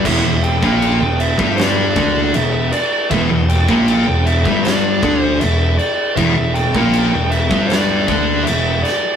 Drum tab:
CC |x-x-x-x-x-x-x-x-|x-x-x-x-x-x-x-x-|x-x-x-x-x-x-x-x-|
SD |--------o-------|--------o-------|--------o-----o-|
BD |o--o---o--o-----|o--o---o--o-----|o--o---o--o-----|